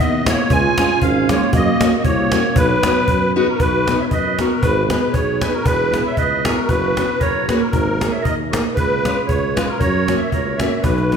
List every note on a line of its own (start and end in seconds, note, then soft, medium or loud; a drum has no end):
0.00 0.32 D#2 medium
0.00 0.24 B3 medium
0.00 0.28 D#5 medium
0.26 0.37 G#3 medium
0.26 0.48 A#3 medium
0.26 0.37 B3 medium
0.26 0.37 E4 medium
0.26 0.52 C#5 medium
0.26 cajon slap medium
0.50 0.68 C#2 loud
0.50 0.98 F4 medium
0.50 1.04 G#5 loud
0.50 cajon bass medium
0.78 0.89 G#3 medium
0.78 0.89 C#4 medium
0.78 0.89 F4 medium
0.78 cajon slap medium
1.02 1.35 G#1 medium
1.02 1.27 C#4 loud
1.02 1.30 F5 medium
1.02 cajon bass medium
1.29 1.40 G#3 medium
1.29 1.52 A#3 medium
1.29 1.40 C#4 medium
1.29 1.41 F4 medium
1.29 1.51 C#5 medium
1.29 cajon slap medium
1.53 1.70 F#2 loud
1.53 1.94 A#3 loud
1.53 1.94 D#5 loud
1.53 cajon bass medium
1.81 1.91 A#3 medium
1.81 1.91 C#4 medium
1.81 1.91 F#4 medium
1.81 cajon slap medium
1.96 2.03 B3 medium
1.96 2.03 D#5 medium
2.04 2.38 C2 medium
2.04 2.53 A#3 medium
2.04 2.57 C#5 medium
2.04 cajon bass medium
2.32 2.43 A#3 medium
2.32 2.43 C#4 medium
2.32 2.43 F#4 medium
2.32 cajon slap medium
2.44 cajon slap soft
2.56 2.74 B1 loud
2.56 3.32 F#3 medium
2.56 3.32 B4 loud
2.56 cajon bass medium
2.83 2.95 B3 medium
2.83 2.95 D#4 medium
2.83 2.95 F#4 medium
2.83 cajon slap medium
3.08 3.41 F#2 medium
3.08 cajon bass medium
3.08 cajon slap soft
3.36 3.46 B3 medium
3.36 3.46 D#4 medium
3.36 3.47 F#4 loud
3.36 3.48 G#4 medium
3.36 3.48 B4 medium
3.49 3.60 F#4 medium
3.49 3.60 A#4 medium
3.60 3.93 B1 medium
3.60 3.98 F#4 medium
3.60 4.00 B4 loud
3.60 cajon bass medium
3.87 3.98 B3 medium
3.87 3.98 D#4 medium
3.87 3.98 F#4 medium
3.87 cajon slap medium
4.00 4.06 C#5 medium
4.00 4.05 E5 medium
4.11 4.45 F#2 medium
4.11 4.38 B4 medium
4.11 4.39 D#5 medium
4.11 cajon bass medium
4.39 4.50 B3 medium
4.39 4.50 D#4 medium
4.39 4.50 F#4 medium
4.39 4.62 F#4 medium
4.39 4.63 A#4 medium
4.39 cajon slap medium
4.62 4.96 G#1 loud
4.62 4.89 G#4 medium
4.62 4.88 B4 loud
4.62 cajon bass medium
4.90 5.01 B3 medium
4.90 5.01 D#4 medium
4.90 5.01 G#4 medium
4.90 5.14 G#4 medium
4.90 5.15 B4 medium
4.90 cajon slap medium
5.13 5.48 B1 medium
5.13 5.42 C#5 medium
5.13 cajon bass medium
5.17 5.41 G#4 medium
5.40 5.52 B3 medium
5.40 5.52 D#4 medium
5.40 5.52 G#4 medium
5.40 5.53 G#4 medium
5.40 5.53 B4 medium
5.40 cajon slap medium
5.54 5.66 F#4 medium
5.54 5.66 A#4 medium
5.65 5.99 E1 medium
5.65 6.03 G#4 medium
5.65 6.02 B4 loud
5.65 cajon bass medium
5.92 6.03 B3 medium
5.92 6.03 E4 medium
5.92 6.03 G#4 medium
5.92 cajon slap medium
6.06 6.17 C#5 medium
6.06 6.17 E5 medium
6.17 6.51 C#2 medium
6.17 6.44 B4 medium
6.17 6.46 D#5 medium
6.17 cajon bass medium
6.44 6.56 B3 medium
6.44 6.56 E4 medium
6.44 6.68 F#4 medium
6.44 6.56 G#4 medium
6.44 6.69 A#4 medium
6.44 cajon slap medium
6.68 7.02 F#1 medium
6.68 7.06 F#4 medium
6.68 7.22 B4 loud
6.68 cajon bass medium
6.97 7.08 B3 medium
6.97 7.08 C#4 soft
6.97 7.08 F#4 medium
6.97 cajon slap medium
7.20 7.55 F#1 medium
7.20 7.46 A#4 medium
7.20 7.47 C#5 medium
7.20 cajon bass medium
7.48 7.60 A#3 medium
7.48 7.60 C#4 medium
7.48 7.60 F#4 medium
7.48 7.60 G#4 medium
7.48 7.61 B4 medium
7.48 cajon slap medium
7.59 7.72 F#4 medium
7.59 7.69 A#4 medium
7.59 cajon slap soft
7.71 8.07 G#1 medium
7.71 8.10 D#4 medium
7.71 8.13 A#4 loud
7.71 cajon bass medium
8.01 8.12 A#3 soft
8.01 8.12 D#4 medium
8.01 8.12 G#4 medium
8.01 cajon slap medium
8.11 8.21 C#5 medium
8.11 8.23 E5 medium
8.22 8.59 D#2 medium
8.22 8.35 A#4 medium
8.22 8.36 D#5 medium
8.22 cajon bass medium
8.51 8.64 A#3 medium
8.51 8.64 D#4 medium
8.51 8.62 F#4 medium
8.51 8.64 G#4 medium
8.51 8.63 A#4 medium
8.51 cajon slap medium
8.74 9.11 C#2 medium
8.74 9.24 G#4 medium
8.74 9.23 B4 loud
8.74 cajon bass medium
9.05 9.16 G#3 medium
9.05 9.16 C#4 medium
9.05 9.16 F4 medium
9.05 cajon slap medium
9.27 9.62 C#2 medium
9.27 9.54 G#4 medium
9.27 9.57 C#5 medium
9.27 cajon bass medium
9.55 9.67 G#3 medium
9.55 9.68 C#4 medium
9.55 9.68 F4 medium
9.55 9.68 G#4 medium
9.55 9.67 B4 medium
9.55 cajon slap medium
9.67 9.80 F#4 medium
9.67 9.80 A#4 medium
9.79 10.14 F#2 loud
9.79 10.17 A#4 medium
9.79 10.21 C#5 loud
9.79 cajon bass medium
10.08 10.19 A#3 medium
10.08 10.19 C#4 medium
10.08 10.19 F#4 medium
10.08 cajon slap medium
10.18 10.30 C#5 medium
10.18 10.31 E5 medium
10.30 10.66 C#2 medium
10.30 10.57 A#4 medium
10.30 10.59 C#5 medium
10.30 cajon bass medium
10.57 10.71 A#3 medium
10.57 10.81 C#5 medium
10.57 10.80 E5 medium
10.57 cajon slap medium
10.61 10.71 C#4 medium
10.61 10.71 F#4 medium
10.82 11.17 B1 loud
10.82 11.17 F#4 medium
10.82 11.17 B4 medium
10.82 cajon bass medium
10.82 cajon slap soft
10.98 cajon slap soft
11.12 11.17 B3 medium
11.12 11.17 D#4 soft
11.12 11.17 F#4 medium
11.12 cajon slap medium